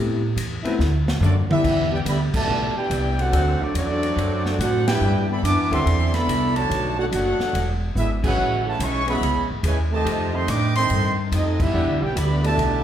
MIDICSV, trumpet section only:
0, 0, Header, 1, 2, 480
1, 0, Start_track
1, 0, Key_signature, 1, "minor"
1, 0, Tempo, 420905
1, 1878, Time_signature, 4, 2, 24, 8
1, 14639, End_track
2, 0, Start_track
2, 0, Title_t, "Trumpet section"
2, 0, Program_c, 0, 61
2, 1409, Note_on_c, 0, 74, 93
2, 1412, Note_on_c, 0, 66, 81
2, 1417, Note_on_c, 0, 60, 80
2, 1418, Note_on_c, 0, 69, 84
2, 1546, Note_off_c, 0, 74, 0
2, 1549, Note_off_c, 0, 66, 0
2, 1553, Note_off_c, 0, 60, 0
2, 1554, Note_off_c, 0, 69, 0
2, 1728, Note_on_c, 0, 62, 94
2, 1731, Note_on_c, 0, 76, 102
2, 1734, Note_on_c, 0, 67, 86
2, 1734, Note_on_c, 0, 71, 85
2, 2166, Note_off_c, 0, 62, 0
2, 2167, Note_off_c, 0, 76, 0
2, 2168, Note_off_c, 0, 71, 0
2, 2169, Note_off_c, 0, 67, 0
2, 2208, Note_on_c, 0, 71, 73
2, 2209, Note_on_c, 0, 74, 73
2, 2209, Note_on_c, 0, 79, 91
2, 2214, Note_on_c, 0, 64, 73
2, 2280, Note_off_c, 0, 71, 0
2, 2281, Note_off_c, 0, 74, 0
2, 2281, Note_off_c, 0, 79, 0
2, 2284, Note_off_c, 0, 64, 0
2, 2376, Note_on_c, 0, 67, 79
2, 2382, Note_on_c, 0, 76, 82
2, 2382, Note_on_c, 0, 83, 93
2, 2383, Note_on_c, 0, 74, 83
2, 2512, Note_off_c, 0, 67, 0
2, 2516, Note_off_c, 0, 83, 0
2, 2517, Note_off_c, 0, 74, 0
2, 2517, Note_off_c, 0, 76, 0
2, 2692, Note_on_c, 0, 81, 100
2, 2694, Note_on_c, 0, 67, 88
2, 2695, Note_on_c, 0, 74, 92
2, 2695, Note_on_c, 0, 76, 87
2, 3127, Note_off_c, 0, 81, 0
2, 3128, Note_off_c, 0, 67, 0
2, 3129, Note_off_c, 0, 74, 0
2, 3129, Note_off_c, 0, 76, 0
2, 3169, Note_on_c, 0, 74, 85
2, 3169, Note_on_c, 0, 79, 102
2, 3172, Note_on_c, 0, 64, 92
2, 3175, Note_on_c, 0, 71, 88
2, 3639, Note_off_c, 0, 74, 0
2, 3639, Note_off_c, 0, 79, 0
2, 3640, Note_off_c, 0, 64, 0
2, 3642, Note_off_c, 0, 71, 0
2, 3658, Note_on_c, 0, 62, 97
2, 3660, Note_on_c, 0, 69, 91
2, 3660, Note_on_c, 0, 72, 88
2, 3662, Note_on_c, 0, 78, 103
2, 4123, Note_off_c, 0, 62, 0
2, 4124, Note_off_c, 0, 69, 0
2, 4124, Note_off_c, 0, 72, 0
2, 4125, Note_off_c, 0, 78, 0
2, 4133, Note_on_c, 0, 66, 82
2, 4134, Note_on_c, 0, 74, 91
2, 4136, Note_on_c, 0, 69, 77
2, 4137, Note_on_c, 0, 60, 83
2, 4277, Note_off_c, 0, 60, 0
2, 4280, Note_off_c, 0, 66, 0
2, 4280, Note_off_c, 0, 69, 0
2, 4281, Note_off_c, 0, 74, 0
2, 4291, Note_on_c, 0, 60, 85
2, 4293, Note_on_c, 0, 66, 84
2, 4293, Note_on_c, 0, 69, 86
2, 4294, Note_on_c, 0, 74, 99
2, 5198, Note_off_c, 0, 60, 0
2, 5200, Note_off_c, 0, 66, 0
2, 5200, Note_off_c, 0, 69, 0
2, 5200, Note_off_c, 0, 74, 0
2, 5244, Note_on_c, 0, 72, 86
2, 5245, Note_on_c, 0, 78, 104
2, 5250, Note_on_c, 0, 62, 92
2, 5252, Note_on_c, 0, 69, 91
2, 5552, Note_off_c, 0, 72, 0
2, 5552, Note_off_c, 0, 78, 0
2, 5554, Note_off_c, 0, 62, 0
2, 5556, Note_off_c, 0, 69, 0
2, 5557, Note_on_c, 0, 71, 101
2, 5561, Note_on_c, 0, 64, 98
2, 5562, Note_on_c, 0, 74, 98
2, 5562, Note_on_c, 0, 79, 109
2, 5999, Note_off_c, 0, 71, 0
2, 6001, Note_off_c, 0, 64, 0
2, 6002, Note_off_c, 0, 74, 0
2, 6002, Note_off_c, 0, 79, 0
2, 6050, Note_on_c, 0, 69, 90
2, 6050, Note_on_c, 0, 74, 92
2, 6057, Note_on_c, 0, 76, 83
2, 6058, Note_on_c, 0, 83, 104
2, 6187, Note_off_c, 0, 76, 0
2, 6201, Note_on_c, 0, 76, 99
2, 6202, Note_on_c, 0, 81, 95
2, 6205, Note_on_c, 0, 86, 104
2, 6208, Note_off_c, 0, 69, 0
2, 6208, Note_off_c, 0, 74, 0
2, 6208, Note_on_c, 0, 71, 94
2, 6212, Note_off_c, 0, 83, 0
2, 6488, Note_off_c, 0, 76, 0
2, 6489, Note_off_c, 0, 81, 0
2, 6490, Note_off_c, 0, 86, 0
2, 6492, Note_off_c, 0, 71, 0
2, 6513, Note_on_c, 0, 76, 99
2, 6514, Note_on_c, 0, 69, 99
2, 6519, Note_on_c, 0, 74, 106
2, 6523, Note_on_c, 0, 84, 114
2, 6990, Note_off_c, 0, 74, 0
2, 6991, Note_off_c, 0, 69, 0
2, 6991, Note_off_c, 0, 76, 0
2, 6995, Note_off_c, 0, 84, 0
2, 7004, Note_on_c, 0, 74, 104
2, 7007, Note_on_c, 0, 69, 95
2, 7007, Note_on_c, 0, 76, 97
2, 7007, Note_on_c, 0, 83, 117
2, 7465, Note_off_c, 0, 74, 0
2, 7477, Note_off_c, 0, 69, 0
2, 7477, Note_off_c, 0, 83, 0
2, 7478, Note_off_c, 0, 76, 0
2, 7479, Note_on_c, 0, 74, 94
2, 7481, Note_on_c, 0, 73, 94
2, 7484, Note_on_c, 0, 66, 100
2, 7484, Note_on_c, 0, 81, 111
2, 7953, Note_off_c, 0, 74, 0
2, 7955, Note_off_c, 0, 73, 0
2, 7956, Note_off_c, 0, 66, 0
2, 7956, Note_off_c, 0, 81, 0
2, 7971, Note_on_c, 0, 73, 78
2, 7973, Note_on_c, 0, 78, 90
2, 7974, Note_on_c, 0, 69, 76
2, 7976, Note_on_c, 0, 62, 80
2, 8042, Note_off_c, 0, 73, 0
2, 8043, Note_off_c, 0, 78, 0
2, 8044, Note_off_c, 0, 69, 0
2, 8046, Note_off_c, 0, 62, 0
2, 8139, Note_on_c, 0, 69, 87
2, 8144, Note_on_c, 0, 62, 79
2, 8146, Note_on_c, 0, 73, 82
2, 8148, Note_on_c, 0, 78, 99
2, 8787, Note_off_c, 0, 69, 0
2, 8789, Note_off_c, 0, 62, 0
2, 8791, Note_off_c, 0, 73, 0
2, 8791, Note_off_c, 0, 78, 0
2, 9101, Note_on_c, 0, 71, 81
2, 9102, Note_on_c, 0, 62, 79
2, 9104, Note_on_c, 0, 76, 90
2, 9105, Note_on_c, 0, 68, 74
2, 9235, Note_off_c, 0, 71, 0
2, 9237, Note_off_c, 0, 62, 0
2, 9238, Note_off_c, 0, 68, 0
2, 9238, Note_off_c, 0, 76, 0
2, 9423, Note_on_c, 0, 73, 88
2, 9424, Note_on_c, 0, 71, 87
2, 9427, Note_on_c, 0, 64, 85
2, 9427, Note_on_c, 0, 78, 100
2, 9853, Note_off_c, 0, 71, 0
2, 9853, Note_off_c, 0, 73, 0
2, 9855, Note_off_c, 0, 64, 0
2, 9855, Note_off_c, 0, 78, 0
2, 9900, Note_on_c, 0, 71, 81
2, 9904, Note_on_c, 0, 64, 75
2, 9904, Note_on_c, 0, 73, 77
2, 9906, Note_on_c, 0, 81, 92
2, 10042, Note_off_c, 0, 71, 0
2, 10045, Note_off_c, 0, 64, 0
2, 10045, Note_off_c, 0, 73, 0
2, 10045, Note_off_c, 0, 81, 0
2, 10052, Note_on_c, 0, 76, 86
2, 10056, Note_on_c, 0, 71, 81
2, 10059, Note_on_c, 0, 80, 87
2, 10061, Note_on_c, 0, 85, 102
2, 10356, Note_off_c, 0, 76, 0
2, 10358, Note_off_c, 0, 71, 0
2, 10359, Note_off_c, 0, 80, 0
2, 10360, Note_off_c, 0, 85, 0
2, 10372, Note_on_c, 0, 73, 91
2, 10372, Note_on_c, 0, 76, 89
2, 10373, Note_on_c, 0, 83, 104
2, 10376, Note_on_c, 0, 68, 94
2, 10807, Note_off_c, 0, 73, 0
2, 10807, Note_off_c, 0, 76, 0
2, 10807, Note_off_c, 0, 83, 0
2, 10809, Note_off_c, 0, 68, 0
2, 11014, Note_on_c, 0, 64, 81
2, 11014, Note_on_c, 0, 71, 81
2, 11015, Note_on_c, 0, 73, 88
2, 11015, Note_on_c, 0, 80, 93
2, 11150, Note_off_c, 0, 64, 0
2, 11150, Note_off_c, 0, 71, 0
2, 11151, Note_off_c, 0, 73, 0
2, 11151, Note_off_c, 0, 80, 0
2, 11332, Note_on_c, 0, 81, 104
2, 11334, Note_on_c, 0, 67, 96
2, 11334, Note_on_c, 0, 72, 89
2, 11334, Note_on_c, 0, 75, 95
2, 11767, Note_off_c, 0, 81, 0
2, 11768, Note_off_c, 0, 67, 0
2, 11768, Note_off_c, 0, 72, 0
2, 11768, Note_off_c, 0, 75, 0
2, 11797, Note_on_c, 0, 69, 82
2, 11797, Note_on_c, 0, 79, 87
2, 11799, Note_on_c, 0, 84, 96
2, 11801, Note_on_c, 0, 75, 83
2, 11956, Note_off_c, 0, 79, 0
2, 11961, Note_off_c, 0, 69, 0
2, 11962, Note_off_c, 0, 84, 0
2, 11963, Note_off_c, 0, 75, 0
2, 11970, Note_on_c, 0, 79, 84
2, 11973, Note_on_c, 0, 86, 97
2, 11976, Note_on_c, 0, 75, 93
2, 11978, Note_on_c, 0, 71, 88
2, 12263, Note_off_c, 0, 79, 0
2, 12264, Note_off_c, 0, 75, 0
2, 12274, Note_on_c, 0, 84, 114
2, 12276, Note_off_c, 0, 86, 0
2, 12276, Note_on_c, 0, 79, 95
2, 12277, Note_on_c, 0, 75, 90
2, 12278, Note_off_c, 0, 71, 0
2, 12281, Note_on_c, 0, 69, 97
2, 12717, Note_off_c, 0, 84, 0
2, 12719, Note_off_c, 0, 75, 0
2, 12719, Note_off_c, 0, 79, 0
2, 12721, Note_off_c, 0, 69, 0
2, 12928, Note_on_c, 0, 67, 80
2, 12929, Note_on_c, 0, 69, 82
2, 12930, Note_on_c, 0, 60, 80
2, 12937, Note_on_c, 0, 75, 96
2, 13212, Note_off_c, 0, 67, 0
2, 13212, Note_off_c, 0, 69, 0
2, 13213, Note_off_c, 0, 60, 0
2, 13217, Note_off_c, 0, 75, 0
2, 13236, Note_on_c, 0, 67, 84
2, 13239, Note_on_c, 0, 71, 86
2, 13242, Note_on_c, 0, 62, 89
2, 13245, Note_on_c, 0, 76, 100
2, 13704, Note_off_c, 0, 71, 0
2, 13712, Note_off_c, 0, 67, 0
2, 13714, Note_on_c, 0, 74, 83
2, 13715, Note_off_c, 0, 62, 0
2, 13715, Note_on_c, 0, 64, 80
2, 13716, Note_on_c, 0, 79, 98
2, 13717, Note_off_c, 0, 76, 0
2, 13718, Note_on_c, 0, 71, 83
2, 13864, Note_off_c, 0, 74, 0
2, 13877, Note_on_c, 0, 76, 83
2, 13878, Note_on_c, 0, 74, 84
2, 13878, Note_on_c, 0, 83, 95
2, 13880, Note_off_c, 0, 64, 0
2, 13881, Note_off_c, 0, 79, 0
2, 13881, Note_on_c, 0, 67, 82
2, 13882, Note_off_c, 0, 71, 0
2, 14188, Note_off_c, 0, 74, 0
2, 14188, Note_off_c, 0, 76, 0
2, 14188, Note_off_c, 0, 83, 0
2, 14190, Note_off_c, 0, 67, 0
2, 14207, Note_on_c, 0, 74, 86
2, 14208, Note_on_c, 0, 81, 102
2, 14209, Note_on_c, 0, 67, 87
2, 14209, Note_on_c, 0, 76, 90
2, 14639, Note_off_c, 0, 67, 0
2, 14639, Note_off_c, 0, 74, 0
2, 14639, Note_off_c, 0, 76, 0
2, 14639, Note_off_c, 0, 81, 0
2, 14639, End_track
0, 0, End_of_file